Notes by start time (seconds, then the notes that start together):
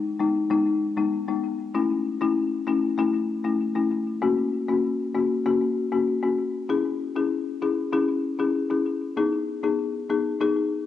Already playing: G#3 B3 D#4
0.20 G#3 B3 D#4
0.50 G#3 B3 D#4
0.97 G#3 B3 D#4
1.28 G#3 B3 D#4
1.75 A3 C#4 E4
2.21 A3 C#4 E4
2.67 A3 C#4 E4
2.98 A3 C#4 E4
3.44 A3 C#4 E4
3.75 A3 C#4 E4
4.22 A#3 C#4 F#4
4.68 A#3 C#4 F#4
5.14 A#3 C#4 F#4
5.45 A#3 C#4 F#4
5.92 A#3 C#4 F#4
6.23 A#3 C#4 F#4
6.69 C#4 E4 G#4
7.16 C#4 E4 G#4
7.62 C#4 E4 G#4
7.93 C#4 E4 G#4
8.39 C#4 E4 G#4
8.70 C#4 E4 G#4
9.17 B3 D#4 G#4
9.63 B3 D#4 G#4
10.10 B3 D#4 G#4
10.40 B3 D#4 G#4